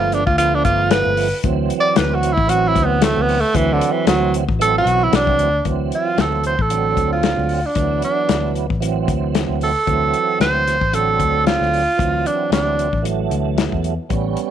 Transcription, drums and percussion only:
0.12 closed hi-hat
0.27 kick
0.38 closed hi-hat
0.65 kick, closed hi-hat
0.91 snare, closed hi-hat
1.17 open hi-hat
1.44 kick, closed hi-hat
1.70 closed hi-hat
1.96 snare, closed hi-hat
2.23 closed hi-hat
2.38 kick
2.49 closed hi-hat
2.76 kick, closed hi-hat
3.02 snare, closed hi-hat
3.29 open hi-hat
3.55 kick, closed hi-hat
3.81 closed hi-hat
4.07 snare, closed hi-hat
4.34 closed hi-hat
4.49 kick
4.61 closed hi-hat
4.87 closed hi-hat
5.13 snare, closed hi-hat
5.27 kick
5.39 closed hi-hat
5.65 kick, closed hi-hat
5.92 closed hi-hat
6.18 snare, closed hi-hat
6.44 closed hi-hat
6.59 kick
6.70 closed hi-hat
6.97 kick, closed hi-hat
7.23 snare, closed hi-hat
7.49 open hi-hat
7.75 kick, closed hi-hat
8.02 closed hi-hat
8.29 snare, closed hi-hat
8.55 closed hi-hat
8.70 kick
8.82 closed hi-hat
9.08 kick, closed hi-hat
9.35 snare, closed hi-hat
9.61 open hi-hat
9.87 kick, closed hi-hat
10.14 closed hi-hat
10.41 snare, closed hi-hat
10.67 snare, closed hi-hat
10.81 kick
10.93 closed hi-hat
11.20 kick, closed hi-hat
11.47 snare, closed hi-hat
11.62 snare
11.73 open hi-hat
11.99 kick, closed hi-hat
12.26 closed hi-hat
12.52 snare, closed hi-hat
12.79 closed hi-hat
12.93 kick
13.05 closed hi-hat
13.31 closed hi-hat
13.58 snare, closed hi-hat
13.72 kick
13.84 closed hi-hat
14.10 kick, closed hi-hat
14.37 closed hi-hat

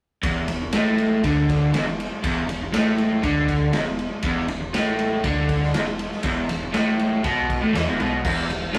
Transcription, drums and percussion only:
0.23 kick, ride
0.48 ride
0.73 snare, ride
0.98 ride
1.24 kick, ride
1.49 kick, ride
1.74 snare, ride
2.00 ride
2.24 kick, ride
2.49 ride
2.74 snare, ride
2.98 ride
3.23 kick, ride
3.48 kick, ride
3.73 snare, ride
3.99 ride
4.23 kick, ride
4.48 ride
4.74 snare, ride
4.99 ride
5.24 kick, ride
5.49 kick, ride
5.63 snare
5.74 snare, ride
5.99 ride
6.12 snare
6.23 kick, ride
6.49 ride
6.74 snare, ride
6.99 ride
7.24 kick, ride
7.50 kick, ride
7.75 snare, ride
8.00 ride
8.25 kick, crash
8.50 ride
8.74 snare, ride

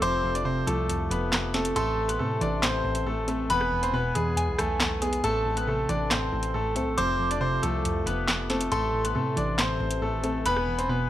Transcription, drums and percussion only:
0.02 closed hi-hat
0.35 closed hi-hat
0.67 closed hi-hat
0.89 closed hi-hat
1.11 closed hi-hat
1.33 snare, clap
1.54 snare, closed hi-hat
1.65 closed hi-hat
1.76 closed hi-hat
2.09 closed hi-hat
2.41 closed hi-hat
2.63 snare, clap, closed hi-hat
2.95 closed hi-hat
3.28 closed hi-hat
3.50 closed hi-hat
3.61 cross-stick
3.83 closed hi-hat
4.15 closed hi-hat
4.37 closed hi-hat
4.59 cross-stick, closed hi-hat
4.80 snare, clap
5.02 closed hi-hat
5.13 closed hi-hat
5.24 closed hi-hat
5.57 closed hi-hat
5.89 closed hi-hat
6.11 snare, clap, closed hi-hat
6.43 closed hi-hat
6.76 closed hi-hat
6.98 closed hi-hat
7.31 closed hi-hat
7.63 closed hi-hat
7.85 closed hi-hat
8.07 closed hi-hat
8.28 snare, clap
8.50 snare, closed hi-hat
8.61 closed hi-hat
8.72 closed hi-hat
9.05 closed hi-hat
9.37 closed hi-hat
9.59 snare, clap, closed hi-hat
9.91 closed hi-hat
10.24 closed hi-hat
10.46 closed hi-hat
10.56 cross-stick
10.79 closed hi-hat

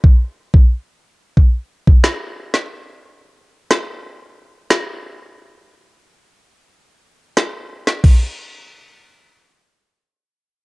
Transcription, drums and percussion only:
0.04 kick
0.54 kick
1.37 kick
1.87 kick
2.04 cross-stick, snare
2.54 snare
3.70 cross-stick, snare
4.70 cross-stick, snare
7.37 cross-stick, snare
7.87 snare
8.04 kick, crash

